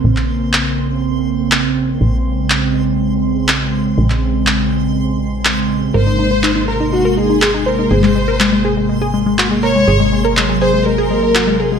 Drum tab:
CP |-x--x-------x---|----x-------x---|-x--x-------x---|----x-------x---|

CP |-x--x-------x---|----x-------x---|